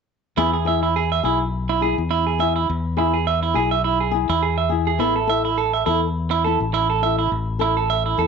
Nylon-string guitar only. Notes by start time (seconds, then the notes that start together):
0.37 B3 E4 G#4
0.65 E4 G#4
1.23 E4 G#4
1.81 E4 G#4
2.39 E4 G#4
2.97 E4 G#4
3.54 E4 G#4
4.11 E4 G#4
4.69 E4 G#4
4.99 B3 E4 A4
5.27 E4 A4
5.86 E4 A4
6.45 E4 A4
7.02 E4 A4
7.59 A4
8.18 E4 A4